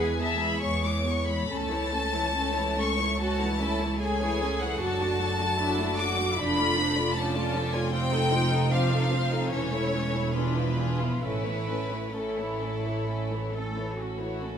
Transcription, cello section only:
0, 0, Header, 1, 2, 480
1, 0, Start_track
1, 0, Key_signature, 3, "major"
1, 0, Tempo, 859599
1, 840, Time_signature, 4, 2, 24, 8
1, 1787, Tempo, 796813
1, 3707, Tempo, 774194
1, 5147, Tempo, 824176
1, 6107, Tempo, 877193
1, 6587, Tempo, 916031
1, 8339, End_track
2, 0, Start_track
2, 0, Title_t, "Cello section"
2, 0, Program_c, 0, 48
2, 0, Note_on_c, 0, 68, 78
2, 596, Note_off_c, 0, 68, 0
2, 1784, Note_on_c, 0, 66, 71
2, 2014, Note_off_c, 0, 66, 0
2, 2037, Note_on_c, 0, 64, 60
2, 2275, Note_on_c, 0, 68, 67
2, 2278, Note_off_c, 0, 64, 0
2, 2745, Note_off_c, 0, 68, 0
2, 2756, Note_on_c, 0, 66, 59
2, 3225, Note_on_c, 0, 64, 67
2, 3228, Note_off_c, 0, 66, 0
2, 3466, Note_off_c, 0, 64, 0
2, 3474, Note_on_c, 0, 66, 71
2, 3705, Note_off_c, 0, 66, 0
2, 3715, Note_on_c, 0, 62, 66
2, 4190, Note_off_c, 0, 62, 0
2, 4190, Note_on_c, 0, 61, 65
2, 4663, Note_off_c, 0, 61, 0
2, 4666, Note_on_c, 0, 60, 70
2, 4900, Note_off_c, 0, 60, 0
2, 4901, Note_on_c, 0, 63, 67
2, 5146, Note_off_c, 0, 63, 0
2, 5147, Note_on_c, 0, 62, 74
2, 5381, Note_on_c, 0, 60, 68
2, 5382, Note_off_c, 0, 62, 0
2, 5617, Note_on_c, 0, 61, 64
2, 5621, Note_off_c, 0, 60, 0
2, 6102, Note_on_c, 0, 62, 57
2, 6104, Note_off_c, 0, 61, 0
2, 6336, Note_on_c, 0, 65, 57
2, 6340, Note_off_c, 0, 62, 0
2, 6578, Note_off_c, 0, 65, 0
2, 6583, Note_on_c, 0, 64, 57
2, 7016, Note_off_c, 0, 64, 0
2, 7061, Note_on_c, 0, 64, 55
2, 7768, Note_off_c, 0, 64, 0
2, 7792, Note_on_c, 0, 69, 54
2, 8024, Note_on_c, 0, 66, 46
2, 8025, Note_off_c, 0, 69, 0
2, 8339, Note_off_c, 0, 66, 0
2, 8339, End_track
0, 0, End_of_file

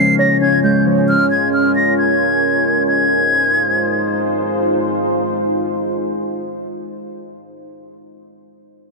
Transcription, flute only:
0, 0, Header, 1, 2, 480
1, 0, Start_track
1, 0, Key_signature, -4, "minor"
1, 0, Tempo, 447761
1, 1164, Time_signature, 4, 2, 24, 8
1, 9553, End_track
2, 0, Start_track
2, 0, Title_t, "Flute"
2, 0, Program_c, 0, 73
2, 0, Note_on_c, 0, 96, 86
2, 186, Note_off_c, 0, 96, 0
2, 204, Note_on_c, 0, 94, 92
2, 426, Note_off_c, 0, 94, 0
2, 444, Note_on_c, 0, 92, 90
2, 666, Note_off_c, 0, 92, 0
2, 684, Note_on_c, 0, 91, 76
2, 906, Note_off_c, 0, 91, 0
2, 1165, Note_on_c, 0, 89, 107
2, 1386, Note_off_c, 0, 89, 0
2, 1404, Note_on_c, 0, 92, 86
2, 1626, Note_off_c, 0, 92, 0
2, 1644, Note_on_c, 0, 89, 93
2, 1866, Note_off_c, 0, 89, 0
2, 1884, Note_on_c, 0, 94, 85
2, 2106, Note_off_c, 0, 94, 0
2, 2123, Note_on_c, 0, 92, 90
2, 3041, Note_off_c, 0, 92, 0
2, 3084, Note_on_c, 0, 92, 100
2, 4481, Note_off_c, 0, 92, 0
2, 9553, End_track
0, 0, End_of_file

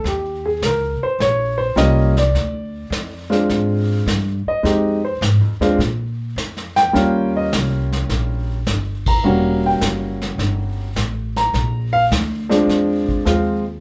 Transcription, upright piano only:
0, 0, Header, 1, 2, 480
1, 0, Start_track
1, 0, Tempo, 574713
1, 40, Time_signature, 4, 2, 24, 8
1, 11527, End_track
2, 0, Start_track
2, 0, Title_t, "Upright piano"
2, 0, Program_c, 0, 0
2, 58, Note_on_c, 0, 67, 60
2, 369, Note_off_c, 0, 67, 0
2, 381, Note_on_c, 0, 68, 58
2, 520, Note_off_c, 0, 68, 0
2, 545, Note_on_c, 0, 70, 67
2, 853, Note_off_c, 0, 70, 0
2, 861, Note_on_c, 0, 72, 74
2, 1001, Note_off_c, 0, 72, 0
2, 1014, Note_on_c, 0, 73, 79
2, 1317, Note_on_c, 0, 72, 75
2, 1327, Note_off_c, 0, 73, 0
2, 1468, Note_off_c, 0, 72, 0
2, 1470, Note_on_c, 0, 55, 58
2, 1471, Note_on_c, 0, 58, 50
2, 1478, Note_on_c, 0, 65, 62
2, 1480, Note_on_c, 0, 61, 55
2, 1485, Note_on_c, 0, 75, 81
2, 1771, Note_off_c, 0, 55, 0
2, 1772, Note_off_c, 0, 58, 0
2, 1775, Note_off_c, 0, 65, 0
2, 1777, Note_off_c, 0, 61, 0
2, 1802, Note_off_c, 0, 75, 0
2, 1821, Note_on_c, 0, 74, 76
2, 2754, Note_on_c, 0, 56, 55
2, 2757, Note_on_c, 0, 62, 48
2, 2759, Note_on_c, 0, 65, 61
2, 2761, Note_on_c, 0, 60, 50
2, 2891, Note_off_c, 0, 74, 0
2, 3361, Note_off_c, 0, 56, 0
2, 3363, Note_off_c, 0, 62, 0
2, 3363, Note_off_c, 0, 65, 0
2, 3364, Note_off_c, 0, 60, 0
2, 3743, Note_on_c, 0, 75, 70
2, 3867, Note_on_c, 0, 56, 54
2, 3874, Note_on_c, 0, 63, 47
2, 3875, Note_on_c, 0, 60, 48
2, 3879, Note_on_c, 0, 67, 55
2, 4170, Note_off_c, 0, 56, 0
2, 4174, Note_off_c, 0, 60, 0
2, 4174, Note_off_c, 0, 63, 0
2, 4176, Note_off_c, 0, 67, 0
2, 4183, Note_off_c, 0, 75, 0
2, 4214, Note_on_c, 0, 72, 60
2, 4357, Note_off_c, 0, 72, 0
2, 4685, Note_on_c, 0, 56, 68
2, 4691, Note_on_c, 0, 60, 64
2, 4691, Note_on_c, 0, 62, 57
2, 4695, Note_on_c, 0, 65, 74
2, 4822, Note_off_c, 0, 56, 0
2, 4825, Note_off_c, 0, 60, 0
2, 4825, Note_off_c, 0, 62, 0
2, 4827, Note_off_c, 0, 65, 0
2, 5649, Note_on_c, 0, 79, 82
2, 5789, Note_on_c, 0, 55, 56
2, 5793, Note_on_c, 0, 58, 50
2, 5797, Note_on_c, 0, 61, 55
2, 5800, Note_on_c, 0, 65, 69
2, 6096, Note_off_c, 0, 79, 0
2, 6152, Note_on_c, 0, 75, 64
2, 6287, Note_off_c, 0, 75, 0
2, 7145, Note_off_c, 0, 55, 0
2, 7147, Note_off_c, 0, 58, 0
2, 7149, Note_off_c, 0, 61, 0
2, 7151, Note_off_c, 0, 65, 0
2, 7582, Note_on_c, 0, 82, 79
2, 7714, Note_on_c, 0, 58, 52
2, 7719, Note_on_c, 0, 55, 51
2, 7724, Note_on_c, 0, 61, 48
2, 7724, Note_on_c, 0, 66, 64
2, 8023, Note_off_c, 0, 82, 0
2, 8070, Note_on_c, 0, 79, 53
2, 8206, Note_off_c, 0, 79, 0
2, 9068, Note_off_c, 0, 58, 0
2, 9071, Note_off_c, 0, 55, 0
2, 9073, Note_off_c, 0, 61, 0
2, 9073, Note_off_c, 0, 66, 0
2, 9496, Note_on_c, 0, 82, 79
2, 9940, Note_off_c, 0, 82, 0
2, 9962, Note_on_c, 0, 77, 92
2, 10055, Note_off_c, 0, 77, 0
2, 10435, Note_on_c, 0, 53, 70
2, 10437, Note_on_c, 0, 56, 59
2, 10438, Note_on_c, 0, 60, 62
2, 10440, Note_on_c, 0, 62, 82
2, 11044, Note_off_c, 0, 53, 0
2, 11045, Note_off_c, 0, 56, 0
2, 11045, Note_off_c, 0, 60, 0
2, 11046, Note_off_c, 0, 62, 0
2, 11069, Note_on_c, 0, 53, 59
2, 11073, Note_on_c, 0, 56, 58
2, 11078, Note_on_c, 0, 65, 68
2, 11081, Note_on_c, 0, 60, 57
2, 11373, Note_off_c, 0, 53, 0
2, 11375, Note_off_c, 0, 56, 0
2, 11378, Note_off_c, 0, 65, 0
2, 11379, Note_off_c, 0, 60, 0
2, 11527, End_track
0, 0, End_of_file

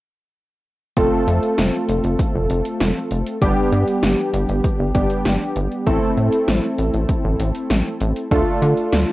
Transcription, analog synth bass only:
0, 0, Header, 1, 2, 480
1, 0, Start_track
1, 0, Tempo, 612245
1, 758, Time_signature, 4, 2, 24, 8
1, 7153, End_track
2, 0, Start_track
2, 0, Title_t, "Analog synth bass"
2, 0, Program_c, 0, 38
2, 758, Note_on_c, 0, 29, 108
2, 853, Note_off_c, 0, 29, 0
2, 998, Note_on_c, 0, 41, 100
2, 1092, Note_off_c, 0, 41, 0
2, 1238, Note_on_c, 0, 29, 110
2, 1333, Note_off_c, 0, 29, 0
2, 1478, Note_on_c, 0, 29, 101
2, 1572, Note_off_c, 0, 29, 0
2, 1598, Note_on_c, 0, 29, 98
2, 1692, Note_off_c, 0, 29, 0
2, 1839, Note_on_c, 0, 29, 91
2, 1933, Note_off_c, 0, 29, 0
2, 1958, Note_on_c, 0, 29, 99
2, 2052, Note_off_c, 0, 29, 0
2, 2198, Note_on_c, 0, 29, 99
2, 2293, Note_off_c, 0, 29, 0
2, 2438, Note_on_c, 0, 29, 89
2, 2533, Note_off_c, 0, 29, 0
2, 2679, Note_on_c, 0, 31, 106
2, 2773, Note_off_c, 0, 31, 0
2, 2918, Note_on_c, 0, 43, 103
2, 3013, Note_off_c, 0, 43, 0
2, 3158, Note_on_c, 0, 31, 102
2, 3253, Note_off_c, 0, 31, 0
2, 3398, Note_on_c, 0, 31, 100
2, 3493, Note_off_c, 0, 31, 0
2, 3518, Note_on_c, 0, 31, 92
2, 3613, Note_off_c, 0, 31, 0
2, 3758, Note_on_c, 0, 31, 91
2, 3853, Note_off_c, 0, 31, 0
2, 3881, Note_on_c, 0, 31, 107
2, 3974, Note_off_c, 0, 31, 0
2, 4119, Note_on_c, 0, 31, 100
2, 4213, Note_off_c, 0, 31, 0
2, 4359, Note_on_c, 0, 31, 103
2, 4453, Note_off_c, 0, 31, 0
2, 4599, Note_on_c, 0, 33, 113
2, 4693, Note_off_c, 0, 33, 0
2, 4839, Note_on_c, 0, 45, 97
2, 4933, Note_off_c, 0, 45, 0
2, 5078, Note_on_c, 0, 33, 99
2, 5173, Note_off_c, 0, 33, 0
2, 5319, Note_on_c, 0, 33, 98
2, 5413, Note_off_c, 0, 33, 0
2, 5439, Note_on_c, 0, 33, 92
2, 5533, Note_off_c, 0, 33, 0
2, 5679, Note_on_c, 0, 33, 94
2, 5773, Note_off_c, 0, 33, 0
2, 5800, Note_on_c, 0, 33, 98
2, 5893, Note_off_c, 0, 33, 0
2, 6038, Note_on_c, 0, 33, 98
2, 6132, Note_off_c, 0, 33, 0
2, 6279, Note_on_c, 0, 33, 106
2, 6373, Note_off_c, 0, 33, 0
2, 6518, Note_on_c, 0, 38, 106
2, 6613, Note_off_c, 0, 38, 0
2, 6758, Note_on_c, 0, 50, 106
2, 6853, Note_off_c, 0, 50, 0
2, 6999, Note_on_c, 0, 38, 101
2, 7093, Note_off_c, 0, 38, 0
2, 7153, End_track
0, 0, End_of_file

